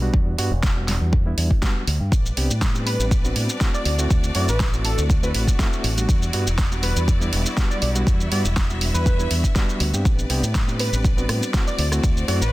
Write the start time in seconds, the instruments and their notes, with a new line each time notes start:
0.01 reed electric piano G3 B3 D4 F#4
0.13 fingered electric bass E2, kick
0.38 fingered electric bass G2, reed electric piano G3 B3 D4 F#4, open hi-hat
0.51 fingered electric bass E1
0.63 kick, snare
0.76 reed electric piano G3 B3 D4 F#4
0.88 snare, open hi-hat
1.01 fingered electric bass E2
1.13 kick
1.26 reed electric piano G3 B3 D4 E4
1.37 fingered electric bass E2, open hi-hat
1.51 kick
1.62 reed electric piano G3 B3 D4 F#4, kick, snare
1.87 fingered electric bass D2, open hi-hat
2.00 fingered electric bass G2
2.11 fingered electric bass A1, string section G3 D4 B4 D5, kick, shaker
2.26 shaker
2.37 fingered electric bass C2, reed electric piano B3 C4 D4 G4, open hi-hat
2.50 fingered electric bass A2, shaker
2.62 kick, snare, shaker
2.74 reed electric piano B3 C4 D4 G4, shaker
2.86 analog synth lead B4, open hi-hat
2.99 fingered electric bass A1, shaker
3.11 kick, shaker
3.24 reed electric piano B3 C4 D4 F#4, shaker
3.36 fingered electric bass A2, open hi-hat
3.49 shaker
3.61 reed electric piano A3 C4 E4 F#4, kick, snare, shaker
3.74 analog synth lead D5, shaker
3.85 fingered electric bass D2, string section A3 F#4, analog synth lead D5, open hi-hat
3.98 reed electric piano A3 C4 E4 F#4, shaker
4.10 fingered electric bass D2, kick, shaker
4.24 shaker
4.35 fingered electric bass F#2, reed electric piano A3 C4 E4 F#4, analog synth lead D5, open hi-hat
4.48 fingered electric bass A1, analog synth lead B4, shaker
4.60 kick, snare, shaker
4.73 reed electric piano A3 C4 E4 F#4, shaker
4.85 analog synth lead A4, open hi-hat
4.98 fingered electric bass D2, shaker
5.10 kick, shaker
5.22 reed electric piano A3 C4 E4 F#4, analog synth lead B4, shaker
5.34 fingered electric bass A1, analog synth lead B4, open hi-hat
5.48 kick, shaker
5.59 reed electric piano A3 C4 E4 F#4, kick, snare, shaker
5.73 shaker
5.84 fingered electric bass A1, open hi-hat
5.97 reed electric piano G3 B3 D4 F#4, shaker
6.08 fingered electric bass E2, string section G3 E4 D5, kick, shaker
6.22 shaker
6.33 fingered electric bass G2, reed electric piano G3 B3 D4 F#4, open hi-hat
6.47 fingered electric bass E1, shaker
6.58 kick, snare, shaker
6.71 reed electric piano G3 B3 D4 F#4, shaker
6.83 analog synth lead B4, open hi-hat
6.96 fingered electric bass E2, shaker
7.08 kick, shaker
7.20 reed electric piano G3 B3 D4 E4, shaker
7.33 fingered electric bass E1, open hi-hat
7.46 shaker
7.57 reed electric piano G3 B3 D4 F#4, kick, snare, shaker
7.70 analog synth lead D5, shaker
7.81 fingered electric bass B1, analog synth lead D5, open hi-hat
7.95 reed electric piano G3 B3 D4 F#4, shaker
8.07 fingered electric bass E2, string section E5, kick, shaker
8.21 shaker
8.31 fingered electric bass G2, reed electric piano G3 B3 D4 F#4, analog synth lead D5, open hi-hat
8.44 fingered electric bass E1, shaker
8.56 kick, snare, shaker
8.70 reed electric piano G3 B3 D4 F#4, shaker
8.81 open hi-hat
8.94 fingered electric bass E2, analog synth lead B4, shaker
9.06 kick, shaker
9.19 reed electric piano G3 B3 D4 E4, shaker
9.31 fingered electric bass E2, open hi-hat
9.44 kick, shaker
9.55 reed electric piano G3 B3 D4 F#4, kick, snare, shaker
9.69 shaker
9.80 fingered electric bass D2, open hi-hat
9.93 fingered electric bass G2, reed electric piano B3 C4 D4 G4, shaker
10.05 fingered electric bass A1, string section G3 B4 D5, kick, shaker
10.19 shaker
10.30 fingered electric bass C2, reed electric piano B3 C4 D4 G4, open hi-hat
10.43 fingered electric bass A2, shaker
10.55 kick, snare, shaker
10.67 reed electric piano B3 C4 D4 G4, shaker
10.79 analog synth lead B4, open hi-hat
10.93 fingered electric bass A1, shaker
11.04 kick, shaker
11.17 reed electric piano B3 C4 D4 F#4, shaker
11.29 fingered electric bass A2, cross-stick, open hi-hat
11.43 shaker
11.54 reed electric piano A3 C4 E4 F#4, kick, snare, shaker
11.67 analog synth lead D5, shaker
11.78 fingered electric bass D2, string section A3 F#4 C5, analog synth lead D5, open hi-hat
11.91 reed electric piano A3 C4 E4 F#4, cross-stick, shaker
12.03 fingered electric bass D2, kick, shaker
12.17 shaker
12.28 fingered electric bass F#2, reed electric piano A3 C4 E4 F#4, analog synth lead D5, open hi-hat
12.41 fingered electric bass A1, analog synth lead B4, shaker